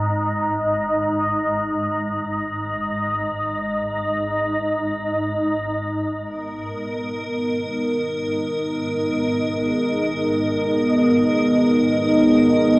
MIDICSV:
0, 0, Header, 1, 4, 480
1, 0, Start_track
1, 0, Key_signature, 5, "minor"
1, 0, Tempo, 500000
1, 12281, End_track
2, 0, Start_track
2, 0, Title_t, "Ambient pad"
2, 0, Program_c, 0, 92
2, 5995, Note_on_c, 0, 70, 73
2, 12281, Note_off_c, 0, 70, 0
2, 12281, End_track
3, 0, Start_track
3, 0, Title_t, "Analog synth pad"
3, 0, Program_c, 1, 89
3, 5996, Note_on_c, 1, 59, 81
3, 6812, Note_on_c, 1, 63, 75
3, 8150, Note_on_c, 1, 75, 68
3, 8693, Note_on_c, 1, 68, 76
3, 12281, Note_off_c, 1, 59, 0
3, 12281, Note_off_c, 1, 63, 0
3, 12281, Note_off_c, 1, 68, 0
3, 12281, Note_off_c, 1, 75, 0
3, 12281, End_track
4, 0, Start_track
4, 0, Title_t, "Synth drone"
4, 0, Program_c, 2, 95
4, 0, Note_on_c, 2, 32, 65
4, 0, Note_on_c, 2, 44, 65
4, 5966, Note_off_c, 2, 44, 0
4, 5967, Note_off_c, 2, 32, 0
4, 5977, Note_on_c, 2, 44, 71
4, 5978, Note_on_c, 2, 32, 60
4, 12281, Note_off_c, 2, 32, 0
4, 12281, Note_off_c, 2, 44, 0
4, 12281, End_track
0, 0, End_of_file